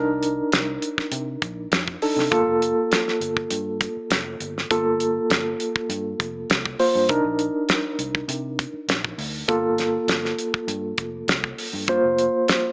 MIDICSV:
0, 0, Header, 1, 5, 480
1, 0, Start_track
1, 0, Key_signature, -2, "minor"
1, 0, Tempo, 598205
1, 1856, Time_signature, 4, 2, 24, 8
1, 10208, End_track
2, 0, Start_track
2, 0, Title_t, "Reed electric piano"
2, 0, Program_c, 0, 4
2, 0, Note_on_c, 0, 62, 73
2, 0, Note_on_c, 0, 63, 63
2, 0, Note_on_c, 0, 70, 83
2, 1584, Note_off_c, 0, 63, 0
2, 1586, Note_off_c, 0, 62, 0
2, 1586, Note_off_c, 0, 70, 0
2, 1624, Note_on_c, 0, 69, 58
2, 1625, Note_on_c, 0, 62, 52
2, 1626, Note_on_c, 0, 63, 49
2, 1848, Note_off_c, 0, 69, 0
2, 1855, Note_on_c, 0, 58, 75
2, 1856, Note_on_c, 0, 65, 66
2, 1858, Note_on_c, 0, 69, 74
2, 1860, Note_off_c, 0, 62, 0
2, 1861, Note_off_c, 0, 63, 0
2, 3741, Note_off_c, 0, 58, 0
2, 3741, Note_off_c, 0, 65, 0
2, 3742, Note_off_c, 0, 69, 0
2, 3778, Note_on_c, 0, 69, 78
2, 3779, Note_on_c, 0, 65, 58
2, 3781, Note_on_c, 0, 58, 69
2, 5423, Note_off_c, 0, 65, 0
2, 5423, Note_off_c, 0, 69, 0
2, 5424, Note_off_c, 0, 58, 0
2, 5451, Note_on_c, 0, 58, 53
2, 5454, Note_on_c, 0, 65, 50
2, 5454, Note_on_c, 0, 72, 66
2, 5692, Note_off_c, 0, 58, 0
2, 5692, Note_on_c, 0, 63, 63
2, 5693, Note_off_c, 0, 65, 0
2, 5693, Note_off_c, 0, 72, 0
2, 5696, Note_on_c, 0, 62, 69
2, 5696, Note_on_c, 0, 70, 76
2, 7581, Note_off_c, 0, 63, 0
2, 7583, Note_off_c, 0, 62, 0
2, 7583, Note_off_c, 0, 70, 0
2, 7609, Note_on_c, 0, 58, 71
2, 7609, Note_on_c, 0, 69, 76
2, 7611, Note_on_c, 0, 65, 63
2, 9501, Note_off_c, 0, 69, 0
2, 9502, Note_off_c, 0, 58, 0
2, 9503, Note_off_c, 0, 65, 0
2, 9539, Note_on_c, 0, 65, 68
2, 9542, Note_on_c, 0, 72, 80
2, 9543, Note_on_c, 0, 58, 69
2, 10208, Note_off_c, 0, 58, 0
2, 10208, Note_off_c, 0, 65, 0
2, 10208, Note_off_c, 0, 72, 0
2, 10208, End_track
3, 0, Start_track
3, 0, Title_t, "Fingered electric bass"
3, 0, Program_c, 1, 33
3, 0, Note_on_c, 1, 36, 97
3, 321, Note_off_c, 1, 36, 0
3, 428, Note_on_c, 1, 36, 89
3, 615, Note_off_c, 1, 36, 0
3, 895, Note_on_c, 1, 48, 84
3, 1087, Note_off_c, 1, 48, 0
3, 1141, Note_on_c, 1, 34, 83
3, 1330, Note_off_c, 1, 34, 0
3, 1377, Note_on_c, 1, 41, 76
3, 1568, Note_off_c, 1, 41, 0
3, 1738, Note_on_c, 1, 48, 75
3, 1830, Note_off_c, 1, 48, 0
3, 1858, Note_on_c, 1, 31, 106
3, 1957, Note_off_c, 1, 31, 0
3, 1981, Note_on_c, 1, 29, 88
3, 2172, Note_off_c, 1, 29, 0
3, 2572, Note_on_c, 1, 31, 79
3, 2764, Note_off_c, 1, 31, 0
3, 2816, Note_on_c, 1, 43, 81
3, 3106, Note_off_c, 1, 43, 0
3, 3292, Note_on_c, 1, 29, 85
3, 3484, Note_off_c, 1, 29, 0
3, 3534, Note_on_c, 1, 31, 97
3, 3724, Note_off_c, 1, 31, 0
3, 3775, Note_on_c, 1, 31, 102
3, 4156, Note_off_c, 1, 31, 0
3, 4252, Note_on_c, 1, 31, 81
3, 4443, Note_off_c, 1, 31, 0
3, 4729, Note_on_c, 1, 43, 83
3, 4921, Note_off_c, 1, 43, 0
3, 4974, Note_on_c, 1, 29, 84
3, 5164, Note_off_c, 1, 29, 0
3, 5215, Note_on_c, 1, 36, 82
3, 5405, Note_off_c, 1, 36, 0
3, 5579, Note_on_c, 1, 43, 77
3, 5670, Note_off_c, 1, 43, 0
3, 5691, Note_on_c, 1, 36, 103
3, 5791, Note_off_c, 1, 36, 0
3, 5813, Note_on_c, 1, 34, 87
3, 6006, Note_off_c, 1, 34, 0
3, 6408, Note_on_c, 1, 36, 77
3, 6601, Note_off_c, 1, 36, 0
3, 6646, Note_on_c, 1, 48, 93
3, 6939, Note_off_c, 1, 48, 0
3, 7129, Note_on_c, 1, 34, 84
3, 7322, Note_off_c, 1, 34, 0
3, 7367, Note_on_c, 1, 38, 94
3, 7560, Note_off_c, 1, 38, 0
3, 7609, Note_on_c, 1, 31, 105
3, 7993, Note_off_c, 1, 31, 0
3, 8084, Note_on_c, 1, 31, 91
3, 8279, Note_off_c, 1, 31, 0
3, 8567, Note_on_c, 1, 43, 83
3, 8761, Note_off_c, 1, 43, 0
3, 8811, Note_on_c, 1, 29, 76
3, 9004, Note_off_c, 1, 29, 0
3, 9049, Note_on_c, 1, 36, 86
3, 9243, Note_off_c, 1, 36, 0
3, 9415, Note_on_c, 1, 43, 81
3, 9609, Note_off_c, 1, 43, 0
3, 9656, Note_on_c, 1, 29, 89
3, 9849, Note_off_c, 1, 29, 0
3, 10208, End_track
4, 0, Start_track
4, 0, Title_t, "Muted fingered electric bass strokes"
4, 3184, Note_on_c, 9, 29, 36
4, 3264, Note_off_c, 9, 29, 0
4, 7010, Note_on_c, 9, 29, 38
4, 7090, Note_off_c, 9, 29, 0
4, 10208, End_track
5, 0, Start_track
5, 0, Title_t, "Drums"
5, 181, Note_on_c, 9, 42, 59
5, 262, Note_off_c, 9, 42, 0
5, 420, Note_on_c, 9, 42, 72
5, 428, Note_on_c, 9, 38, 105
5, 500, Note_off_c, 9, 42, 0
5, 509, Note_off_c, 9, 38, 0
5, 660, Note_on_c, 9, 42, 59
5, 740, Note_off_c, 9, 42, 0
5, 786, Note_on_c, 9, 36, 75
5, 795, Note_on_c, 9, 38, 33
5, 867, Note_off_c, 9, 36, 0
5, 875, Note_off_c, 9, 38, 0
5, 895, Note_on_c, 9, 42, 82
5, 975, Note_off_c, 9, 42, 0
5, 1139, Note_on_c, 9, 42, 54
5, 1140, Note_on_c, 9, 36, 72
5, 1219, Note_off_c, 9, 42, 0
5, 1220, Note_off_c, 9, 36, 0
5, 1378, Note_on_c, 9, 42, 68
5, 1387, Note_on_c, 9, 38, 105
5, 1458, Note_off_c, 9, 42, 0
5, 1467, Note_off_c, 9, 38, 0
5, 1505, Note_on_c, 9, 36, 75
5, 1585, Note_off_c, 9, 36, 0
5, 1621, Note_on_c, 9, 46, 79
5, 1701, Note_off_c, 9, 46, 0
5, 1758, Note_on_c, 9, 38, 31
5, 1839, Note_off_c, 9, 38, 0
5, 1860, Note_on_c, 9, 36, 109
5, 1864, Note_on_c, 9, 42, 71
5, 1940, Note_off_c, 9, 36, 0
5, 1944, Note_off_c, 9, 42, 0
5, 2103, Note_on_c, 9, 42, 59
5, 2183, Note_off_c, 9, 42, 0
5, 2340, Note_on_c, 9, 42, 76
5, 2348, Note_on_c, 9, 38, 98
5, 2420, Note_off_c, 9, 42, 0
5, 2429, Note_off_c, 9, 38, 0
5, 2472, Note_on_c, 9, 38, 31
5, 2552, Note_off_c, 9, 38, 0
5, 2579, Note_on_c, 9, 42, 59
5, 2659, Note_off_c, 9, 42, 0
5, 2701, Note_on_c, 9, 36, 81
5, 2782, Note_off_c, 9, 36, 0
5, 2812, Note_on_c, 9, 42, 90
5, 2893, Note_off_c, 9, 42, 0
5, 3054, Note_on_c, 9, 42, 64
5, 3055, Note_on_c, 9, 36, 80
5, 3134, Note_off_c, 9, 42, 0
5, 3135, Note_off_c, 9, 36, 0
5, 3294, Note_on_c, 9, 42, 86
5, 3303, Note_on_c, 9, 38, 107
5, 3374, Note_off_c, 9, 42, 0
5, 3383, Note_off_c, 9, 38, 0
5, 3534, Note_on_c, 9, 42, 64
5, 3614, Note_off_c, 9, 42, 0
5, 3673, Note_on_c, 9, 38, 33
5, 3753, Note_off_c, 9, 38, 0
5, 3776, Note_on_c, 9, 36, 102
5, 3776, Note_on_c, 9, 42, 84
5, 3856, Note_off_c, 9, 42, 0
5, 3857, Note_off_c, 9, 36, 0
5, 4013, Note_on_c, 9, 42, 60
5, 4093, Note_off_c, 9, 42, 0
5, 4255, Note_on_c, 9, 42, 75
5, 4264, Note_on_c, 9, 38, 100
5, 4335, Note_off_c, 9, 42, 0
5, 4344, Note_off_c, 9, 38, 0
5, 4493, Note_on_c, 9, 42, 55
5, 4573, Note_off_c, 9, 42, 0
5, 4620, Note_on_c, 9, 36, 83
5, 4700, Note_off_c, 9, 36, 0
5, 4732, Note_on_c, 9, 42, 78
5, 4812, Note_off_c, 9, 42, 0
5, 4974, Note_on_c, 9, 36, 76
5, 4975, Note_on_c, 9, 42, 59
5, 5054, Note_off_c, 9, 36, 0
5, 5055, Note_off_c, 9, 42, 0
5, 5214, Note_on_c, 9, 42, 80
5, 5223, Note_on_c, 9, 38, 106
5, 5294, Note_off_c, 9, 42, 0
5, 5303, Note_off_c, 9, 38, 0
5, 5340, Note_on_c, 9, 36, 76
5, 5420, Note_off_c, 9, 36, 0
5, 5452, Note_on_c, 9, 46, 73
5, 5532, Note_off_c, 9, 46, 0
5, 5688, Note_on_c, 9, 42, 76
5, 5692, Note_on_c, 9, 36, 97
5, 5769, Note_off_c, 9, 42, 0
5, 5772, Note_off_c, 9, 36, 0
5, 5928, Note_on_c, 9, 42, 60
5, 6008, Note_off_c, 9, 42, 0
5, 6168, Note_on_c, 9, 42, 78
5, 6177, Note_on_c, 9, 38, 98
5, 6248, Note_off_c, 9, 42, 0
5, 6257, Note_off_c, 9, 38, 0
5, 6410, Note_on_c, 9, 42, 62
5, 6490, Note_off_c, 9, 42, 0
5, 6538, Note_on_c, 9, 36, 85
5, 6618, Note_off_c, 9, 36, 0
5, 6650, Note_on_c, 9, 42, 82
5, 6730, Note_off_c, 9, 42, 0
5, 6893, Note_on_c, 9, 36, 77
5, 6893, Note_on_c, 9, 42, 63
5, 6973, Note_off_c, 9, 36, 0
5, 6973, Note_off_c, 9, 42, 0
5, 7131, Note_on_c, 9, 42, 86
5, 7140, Note_on_c, 9, 38, 107
5, 7211, Note_off_c, 9, 42, 0
5, 7220, Note_off_c, 9, 38, 0
5, 7258, Note_on_c, 9, 36, 76
5, 7338, Note_off_c, 9, 36, 0
5, 7371, Note_on_c, 9, 46, 72
5, 7452, Note_off_c, 9, 46, 0
5, 7612, Note_on_c, 9, 36, 102
5, 7615, Note_on_c, 9, 42, 85
5, 7692, Note_off_c, 9, 36, 0
5, 7695, Note_off_c, 9, 42, 0
5, 7850, Note_on_c, 9, 42, 64
5, 7859, Note_on_c, 9, 38, 31
5, 7930, Note_off_c, 9, 42, 0
5, 7939, Note_off_c, 9, 38, 0
5, 8091, Note_on_c, 9, 42, 75
5, 8099, Note_on_c, 9, 38, 97
5, 8171, Note_off_c, 9, 42, 0
5, 8180, Note_off_c, 9, 38, 0
5, 8226, Note_on_c, 9, 38, 33
5, 8306, Note_off_c, 9, 38, 0
5, 8333, Note_on_c, 9, 42, 60
5, 8413, Note_off_c, 9, 42, 0
5, 8458, Note_on_c, 9, 36, 87
5, 8538, Note_off_c, 9, 36, 0
5, 8571, Note_on_c, 9, 42, 75
5, 8651, Note_off_c, 9, 42, 0
5, 8807, Note_on_c, 9, 42, 55
5, 8811, Note_on_c, 9, 36, 73
5, 8888, Note_off_c, 9, 42, 0
5, 8891, Note_off_c, 9, 36, 0
5, 9052, Note_on_c, 9, 42, 76
5, 9061, Note_on_c, 9, 38, 108
5, 9133, Note_off_c, 9, 42, 0
5, 9141, Note_off_c, 9, 38, 0
5, 9179, Note_on_c, 9, 36, 67
5, 9259, Note_off_c, 9, 36, 0
5, 9295, Note_on_c, 9, 46, 79
5, 9375, Note_off_c, 9, 46, 0
5, 9532, Note_on_c, 9, 36, 104
5, 9532, Note_on_c, 9, 42, 78
5, 9612, Note_off_c, 9, 42, 0
5, 9613, Note_off_c, 9, 36, 0
5, 9777, Note_on_c, 9, 42, 54
5, 9857, Note_off_c, 9, 42, 0
5, 10017, Note_on_c, 9, 42, 77
5, 10026, Note_on_c, 9, 38, 99
5, 10097, Note_off_c, 9, 42, 0
5, 10106, Note_off_c, 9, 38, 0
5, 10208, End_track
0, 0, End_of_file